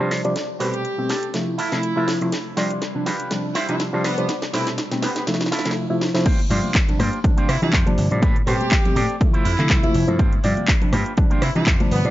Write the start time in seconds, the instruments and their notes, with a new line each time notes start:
0.00 slap bass G2, reed electric piano C3 F3 G3 D4, clean electric guitar F4 G4 C5
0.11 slap bass C3, snare, open hi-hat
0.24 slap bass F2, reed electric piano C3 F3 G3 D4, muted clean electric guitar stroke, closed hi-hat
0.36 snare, closed hi-hat
0.49 muted slap bass stroke
0.60 slap bass A2, reed electric piano B2 G3 A3 C4, clean electric guitar C4 G4 B4, horn section G4, open hi-hat
0.74 closed hi-hat
0.84 muted clean electric guitar stroke, closed hi-hat
0.98 reed electric piano B2 G3 A3 C4
1.09 slap bass A2, clean electric guitar C4 G4 A4, snare, open hi-hat
1.23 closed hi-hat
1.34 reed electric piano C3 F3 A3 E4, snare, closed hi-hat
1.58 slap bass F2, clean electric guitar E4 F4 A4, horn section E4, open hi-hat
1.72 reed electric piano C3 F3 A3 E4, slap bass D3, snare, closed hi-hat
1.83 closed hi-hat
1.96 slap bass F2, reed electric piano C3 F3 A3 E4, clean electric guitar E4 F4 A4
2.08 slap bass A2, snare, open hi-hat
2.21 slap bass C2, reed electric piano C3 F3 A3 E4, muted clean electric guitar stroke, closed hi-hat
2.32 snare, closed hi-hat
2.56 slap bass G2, reed electric piano C3 F3 G3 D4, clean electric guitar F4 G4 C5, snare, open hi-hat
2.71 closed hi-hat
2.81 muted clean electric guitar stroke, snare, closed hi-hat
2.95 reed electric piano C3 F3 G3 D4
3.06 slap bass G2, clean electric guitar F4 G4 B4, snare, open hi-hat
3.20 closed hi-hat
3.31 reed electric piano C3 F3 G3 D4, snare, closed hi-hat
3.55 slap bass C3, horn section E4, clean electric guitar F4 G4 C5, snare, open hi-hat
3.69 reed electric piano C3 F3 G3 D4, slap bass E3, horn section E4, closed hi-hat
3.80 snare, closed hi-hat
3.93 slap bass G2, reed electric piano C3 F3 G3 D4, clean electric guitar F4 G4 C5
4.04 slap bass C3, horn section B3, snare, open hi-hat
4.17 slap bass F2, reed electric piano C3 F3 G3 D4, muted clean electric guitar stroke, closed hi-hat
4.29 snare, closed hi-hat
4.42 snare, closed hi-hat
4.53 slap bass A2, reed electric piano B2 G3 A3 C4, clean electric guitar C4 G4 B4, horn section E4, snare, open hi-hat
4.67 snare, closed hi-hat
4.78 muted clean electric guitar stroke, snare, closed hi-hat
4.91 reed electric piano B2 G3 A3 C4, snare, closed hi-hat
5.02 slap bass A2, horn section B3, clean electric guitar C4 G4 B4, snare, open hi-hat
5.16 horn section B3, snare, closed hi-hat
5.27 reed electric piano C3 F3 A3 E4, snare, closed hi-hat
5.34 snare
5.41 snare, closed hi-hat
5.46 snare
5.51 slap bass F2, clean electric guitar E4 F4 A4, snare, open hi-hat
5.59 snare
5.65 reed electric piano C3 F3 A3 E4, slap bass D3, snare, closed hi-hat
5.71 snare
5.90 reed electric piano C3 F3 A3 E4
6.01 snare
6.14 reed electric piano C3 F3 A3 E4, snare
6.25 clean electric guitar D4 F4 G4 C5, kick, closed hi-hat, crash, high conga, shaker
6.39 closed hi-hat
6.50 slap bass G2, reed electric piano C3 F3 G3 D4, clean electric guitar D4 F4 G4 C5, open hi-hat
6.64 closed hi-hat, high conga, shaker
6.75 kick, clap, closed hi-hat
6.88 reed electric piano C3 F3 G3 D4, closed hi-hat, low conga, shaker
6.99 slap bass G2, clean electric guitar D4 F4 G4 C5, cross-stick, open hi-hat, high conga
7.13 closed hi-hat, shaker
7.23 reed electric piano C3 F3 G3 D4, kick, closed hi-hat, shaker
7.37 clean electric guitar D4 F4 G4 C5, closed hi-hat, high conga, shaker
7.49 slap bass C3, horn section E4, cross-stick, open hi-hat
7.62 reed electric piano C3 F3 G3 D4, slap bass E3, horn section E4, closed hi-hat, shaker
7.73 slap bass F2, clean electric guitar D4 F4 G4 C5, kick, clap, closed hi-hat
7.86 reed electric piano C3 F3 G3 D4, closed hi-hat, high conga, low conga, shaker
7.97 slap bass G1, muted clean electric guitar stroke, open hi-hat
8.11 slap bass A2, reed electric piano C3 F3 G3 D4, closed hi-hat, shaker
8.22 clean electric guitar C4 G4 A4 B4, kick, closed hi-hat, high conga, shaker
8.36 closed hi-hat, shaker
8.46 slap bass A2, reed electric piano B2 G3 A3 C4, clean electric guitar C4 G4 A4 C5, horn section G4, open hi-hat
8.61 closed hi-hat, high conga, shaker
8.71 kick, clap, closed hi-hat
8.85 reed electric piano B2 G3 A3 C4, closed hi-hat, low conga, shaker
8.95 slap bass A2, clean electric guitar C4 G4 A4 D5, open hi-hat, high conga
9.09 closed hi-hat, shaker
9.20 reed electric piano C3 F3 A3 E4, kick, closed hi-hat, shaker
9.33 clean electric guitar E4 F4 A4 C5, muted slap bass stroke, closed hi-hat, high conga, shaker
9.45 slap bass F2, horn section E4, open hi-hat
9.58 reed electric piano C3 F3 A3 E4, slap bass D3, clap, closed hi-hat, shaker
9.70 slap bass C2, clean electric guitar E4 F4 A4 C5, kick, clap, closed hi-hat
9.83 reed electric piano C3 F3 A3 E4, closed hi-hat, high conga, low conga, shaker
9.94 slap bass F1, muted clean electric guitar stroke, open hi-hat
10.07 slap bass G2, reed electric piano C3 F3 A3 E4, closed hi-hat, shaker
10.19 clean electric guitar D4 F4 G4 C5, kick, closed hi-hat, high conga, shaker
10.33 closed hi-hat, shaker
10.43 slap bass G2, reed electric piano C3 F3 G3 D4, clean electric guitar D4 F4 G4 D5, open hi-hat
10.57 closed hi-hat, high conga, shaker
10.68 kick, clap, closed hi-hat
10.82 reed electric piano C3 F3 G3 D4, closed hi-hat, low conga, shaker
10.92 slap bass G2, clean electric guitar D4 F4 G4 B4, cross-stick, open hi-hat, high conga
11.06 closed hi-hat, shaker
11.17 reed electric piano C3 F3 G3 D4, kick, closed hi-hat, shaker
11.30 clean electric guitar D4 F4 G4 C5, closed hi-hat, high conga, shaker
11.42 slap bass C3, horn section E4, cross-stick, open hi-hat
11.55 reed electric piano C3 F3 G3 D4, slap bass E3, horn section E4, closed hi-hat, shaker
11.66 slap bass F2, clean electric guitar D4 F4 G4 C5, kick, clap, closed hi-hat
11.80 reed electric piano C3 F3 G3 D4, closed hi-hat, high conga, low conga, shaker
11.91 slap bass G1, horn section B3, muted clean electric guitar stroke, open hi-hat
12.04 slap bass A2, reed electric piano C3 F3 G3 D4, closed hi-hat, shaker